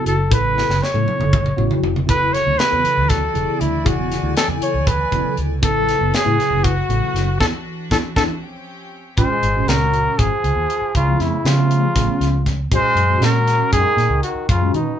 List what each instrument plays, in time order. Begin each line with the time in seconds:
Already playing: tine electric piano C#3 F#3 B3 E4 F#4
0.06 fingered electric bass F#1, trumpet A4, closed hi-hat
0.30 fingered electric bass A1, tine electric piano C#3 F#3 B3 E4 A4, trumpet B4, kick, closed hi-hat
0.58 snare
0.70 fingered electric bass F#1, snare
0.83 trumpet C#5, snare
0.94 fingered electric bass A2, tine electric piano C#3 F#3 B3 E4 A4, high tom
1.07 muted fingered electric bass stroke, high tom
1.20 fingered electric bass F#1, mid tom
1.33 kick, mid tom
1.46 mid tom
1.56 fingered electric bass A1, tine electric piano C#3 F#3 B3 E4 F#4, mid tom
1.71 floor tom
1.83 fingered electric bass F1, floor tom
1.96 floor tom
2.06 fingered electric bass E1, tine electric piano C#3 F#3 B3 E4 A4, string section E3 A3 F#4 D5, trumpet B4, kick, closed hi-hat
2.34 trumpet C#5, snare, closed hi-hat
2.47 fingered electric bass D2
2.58 trumpet B4, snare, closed hi-hat
2.71 fingered electric bass E2, tine electric piano C#3 F#3 B3 E4 A4
2.85 muted fingered electric bass stroke, closed hi-hat
2.97 fingered electric bass D2
3.09 trumpet A4, kick, snare, closed hi-hat
3.33 fingered electric bass E1, tine electric piano C#3 F#3 B3 E4 G#4, closed hi-hat
3.61 fingered electric bass D2, trumpet E4, closed hi-hat
3.84 fingered electric bass E1, tine electric piano C#3 F#3 B3 E4 G#4, trumpet F#4, string section G#5, kick, closed hi-hat
4.12 snare, closed hi-hat
4.23 fingered electric bass D2
4.37 trumpet A4, snare, closed hi-hat
4.48 fingered electric bass E2, tine electric piano C#3 F#3 B3 E4 A4
4.61 trumpet C#5, muted fingered electric bass stroke, closed hi-hat
4.74 fingered electric bass D2
4.87 trumpet B4, kick, closed hi-hat
5.11 fingered electric bass E1, tine electric piano C#3 F#3 B3 E4 A4, kick, closed hi-hat
5.37 fingered electric bass D2, closed hi-hat
5.61 fingered electric bass A1, tine electric piano C#3 F#3 B3 E4 A4, string section C#3 B3 F#4, trumpet A4, kick, closed hi-hat
5.89 snare, closed hi-hat
6.01 fingered electric bass F#1
6.14 trumpet G#4, snare, closed hi-hat
6.24 fingered electric bass A2, tine electric piano C#3 F#3 B3 E4 B4
6.39 muted fingered electric bass stroke, snare, closed hi-hat
6.50 fingered electric bass F#1
6.64 trumpet F#4, kick, closed hi-hat
6.89 fingered electric bass A1, tine electric piano C#3 F#3 B3 E4 A4, closed hi-hat
7.14 fingered electric bass F#1, snare, closed hi-hat
7.39 fingered electric bass E2, string section E3 D4, tine electric piano B3 D4 E4, trumpet A4, kick, snare
7.91 fingered electric bass E2, tine electric piano B3 D4 E4, trumpet A4, kick, snare
8.16 fingered electric bass E2, tine electric piano B3 D4 E4, trumpet A4, kick, snare
8.41 string section F3 C4 C#4 G4
9.17 fingered electric bass G#1, tine electric piano A#2 D#3 G#3 C#4 F4, trombone G#3, trumpet C5, kick, closed hi-hat
9.42 fingered electric bass G#1, closed hi-hat
9.55 tine electric piano A#2 D#3 G#3 C#4 F#4
9.67 fingered electric bass C#2, trombone F#3, trumpet A#4, snare, closed hi-hat
9.94 closed hi-hat
10.18 fingered electric bass G#1, trombone F3, trumpet G#4, kick, closed hi-hat
10.44 fingered electric bass C#2, closed hi-hat
10.56 fingered electric bass D#2
10.70 closed hi-hat
10.81 muted fingered electric bass stroke
10.95 fingered electric bass C#2, trombone C#3, trumpet F4, kick, closed hi-hat
11.08 tine electric piano C#3 F3 A3 B3 E4
11.20 fingered electric bass F2, trombone C#3, trumpet E4, snare, closed hi-hat
11.44 fingered electric bass C#3, tine electric piano C#3 F3 A3 B3 G4, trombone C#3, trumpet F4, snare, closed hi-hat
11.58 tine electric piano C#3 F3 A3 B3 G4
11.71 closed hi-hat
11.95 fingered electric bass A1, tine electric piano C#3 F3 A3 B3 C#4, kick, snare, closed hi-hat
12.20 fingered electric bass C#2, snare, closed hi-hat
12.46 kick, snare, closed hi-hat
12.72 fingered electric bass F#2, tine electric piano A#2 D#3 G#3 C#4 F#4, trombone G#3, trumpet C5, kick, closed hi-hat
12.83 muted fingered electric bass stroke
12.95 fingered electric bass F#2, closed hi-hat
13.10 tine electric piano A#2 D#3 G#3 C#4 F#4
13.21 fingered electric bass A#2, trombone F#3, trumpet A#4, snare, closed hi-hat
13.48 snare, closed hi-hat
13.73 fingered electric bass F#2, trombone D#3, trumpet G#4, kick, closed hi-hat
13.97 fingered electric bass A#2, snare, closed hi-hat
14.09 fingered electric bass C#2
14.23 trombone D#3, trumpet F#4, closed hi-hat
14.35 muted fingered electric bass stroke
14.49 fingered electric bass F#2, trombone C#3, trumpet F4, kick, closed hi-hat
14.61 tine electric piano A#2 D#3 G#3 C#4 F#4
14.73 fingered electric bass D#3, trumpet D#4, closed hi-hat
14.78 trombone B2